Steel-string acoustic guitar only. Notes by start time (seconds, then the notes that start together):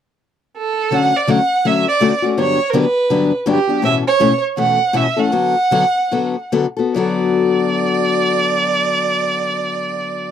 0.91 D3 F#3 A3 C#4 F#4
1.27 D3 F#3 A3 C#4 F#4
1.65 D3 F#3 A3 C#4 F#4
2.00 D3 F#3 A3 C#4 F#4
2.22 A3 C#4 F#4
2.38 G2 D3 F#3 B3 D4 G4
2.73 G2 D3 F#3 B3 D4 G4
3.10 G2 D3 F#3 B3 D4 G4
3.46 G2 D3 F#3 B3 D4 G4
3.67 F#3 B3 D4 G4
3.82 A2 B2 E3 A3 C#4 A4
4.20 A2 B2 E3 A3 C#4 A4
4.57 A2 B2 E3 A3 C#4 A4
4.93 A2 B2 E3 A3 C#4 A4
5.16 E3 A3 C#4 A4
5.32 D3 F#3 B3 F#4 A4
5.71 D3 F#3 B3 F#4 A4
6.11 D3 F#3 B3 F#4 A4
6.52 D3 F#3 B3 F#4 A4
6.77 B3 F#4 A4
6.94 D3 F#3 B3 F#4 A4